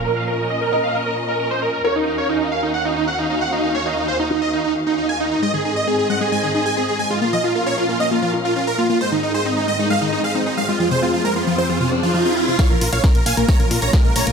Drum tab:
HH |----------------|----------------|----------------|----------------|
SD |----------------|----------------|----------------|----------------|
BD |----------------|----------------|----------------|----------------|

HH |----------------|----------------|----------------|x-oxxxoxxxoxx-ox|
SD |----------------|----------------|----------------|o---o---o---o---|
BD |----------------|----------------|----------------|o---o---o---o---|